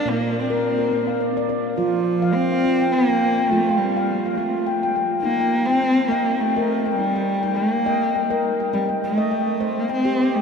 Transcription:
Already playing: D4 D5
0.05 A#2 A#3
0.10 A#3
0.21 C5
0.39 C4
0.50 A#4
0.79 A#4
0.92 A#3
1.07 F5
1.20 D5
1.37 D5
1.49 D5
1.78 F3 F4
2.22 F5
2.33 C4
2.52 F5
2.65 F4
2.81 G5
2.92 A#3 G5
3.10 G5
3.23 G5
3.49 F3 A3 F4
3.69 G5
3.77 G3
3.97 F5
4.26 F5
4.35 A3 F4
4.67 G5
4.83 G5
4.96 G5
5.22 A#3 D#4
5.40 G5
5.65 C4
5.70 G5
5.82 G5
6.08 A#3 D#5 G5
6.40 A3 G5
6.56 A#4 D#5
6.86 G5
6.95 G3 D#4
7.15 G5
7.43 G5
7.55 A#3 G5
7.86 D#5 G5
8.15 G5
8.30 A#4 D#5
8.60 G5
8.73 G3 C4
8.89 G5
9.04 A3
9.18 D#5
9.31 G5
9.60 C5 D#5
9.79 A#3
9.89 C4 G5
10.05 G4 C5
10.35 A3 G5

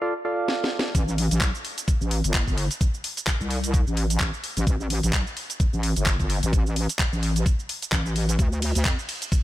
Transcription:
0.02 F4 A4 D5 F5
0.25 F4 A4 D5 F5
0.48 snare
0.64 snare
0.79 snare
0.95 A1, kick, closed hi-hat, cabasa
1.08 cabasa
1.18 open hi-hat
1.31 A1, closed hi-hat, cabasa
1.41 C2, kick, clap, closed hi-hat, cabasa
1.55 cabasa
1.65 open hi-hat
1.78 closed hi-hat, cabasa
1.88 kick, closed hi-hat, cabasa
2.01 A1, cabasa
2.11 open hi-hat
2.24 G1, closed hi-hat, cabasa
2.34 kick, clap, closed hi-hat, cabasa
2.48 kick, cabasa
2.58 open hi-hat
2.71 closed hi-hat, cabasa
2.81 kick, closed hi-hat, cabasa
2.94 cabasa
3.04 open hi-hat
3.17 closed hi-hat, cabasa
3.27 kick, clap, closed hi-hat, cabasa
3.41 C2, cabasa
3.51 open hi-hat
3.64 closed hi-hat, cabasa
3.74 kick, closed hi-hat, cabasa
3.87 A1, cabasa
3.97 open hi-hat
4.10 closed hi-hat, cabasa
4.20 A1, kick, clap, closed hi-hat, cabasa
4.34 cabasa
4.44 open hi-hat
4.57 A1, closed hi-hat, cabasa
4.67 A1, kick, closed hi-hat, cabasa
4.80 cabasa
4.90 open hi-hat
5.03 A1, closed hi-hat, cabasa
5.13 C2, kick, clap, closed hi-hat, cabasa
5.27 cabasa
5.37 open hi-hat
5.50 closed hi-hat, cabasa
5.60 kick, closed hi-hat, cabasa
5.73 A1, cabasa
5.83 open hi-hat
5.96 G1, closed hi-hat, cabasa
6.06 kick, clap, closed hi-hat, cabasa
6.20 kick, cabasa
6.30 open hi-hat
6.43 A1, closed hi-hat, cabasa
6.53 kick, closed hi-hat, cabasa
6.66 cabasa
6.76 open hi-hat
6.89 closed hi-hat, cabasa
6.99 kick, clap, closed hi-hat, cabasa
7.13 A1, cabasa
7.23 open hi-hat
7.36 closed hi-hat, cabasa
7.46 kick, closed hi-hat, cabasa
7.59 cabasa
7.69 open hi-hat
7.82 closed hi-hat, cabasa
7.92 A1, kick, clap, closed hi-hat, cabasa
8.06 cabasa
8.16 open hi-hat
8.29 closed hi-hat, cabasa
8.39 D2, kick, closed hi-hat, cabasa
8.52 cabasa
8.62 open hi-hat, ride
8.75 D2, closed hi-hat, cabasa
8.85 F2, kick, clap, closed hi-hat, cabasa
8.99 cabasa
9.09 open hi-hat, ride
9.22 closed hi-hat, cabasa
9.32 kick, closed hi-hat, cabasa

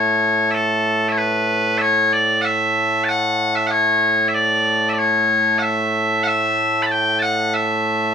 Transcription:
Already playing: A2 A3 C#5
0.51 A4 E5
1.09 C#5 E5
1.18 B4
1.78 C#5 E5
2.13 D5
2.41 E5 F#5
3.04 A5
3.09 F#5
3.56 E5
3.67 C#5 F#5
4.28 E5
4.34 D5
4.89 E5
4.93 D5
4.99 C#5
5.59 E5 F#5
6.24 E5 F#5
6.83 A5 B5
6.91 G5
7.19 F#5 A5
7.54 E5

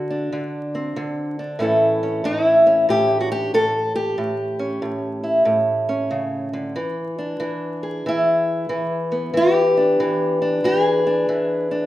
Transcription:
Already playing: D3 F#4
0.10 D4
0.32 D3
0.75 C4
0.96 D3
1.39 D4
1.59 A2 E3 C#4 E4 A4
2.03 C#4
2.24 A2 D#4
2.45 E4
2.66 C#4
2.89 A2 G4
3.10 D#4
3.21 D4 F#4
3.32 G4
3.54 A2 A4
3.95 G4
4.18 A2
4.59 C#4
4.82 A2
5.24 E4
5.45 A2
5.89 C#4
6.11 C#3
6.53 D3
6.76 E3
7.18 D4
7.40 E3
7.83 G#4
8.06 E3 E4
8.69 E3
9.12 B3
9.34 E3 G4
9.77 D4
10.00 E3
10.42 D4
10.64 E3 G4
10.83 G#4
11.07 D4
11.29 E3
11.71 D4

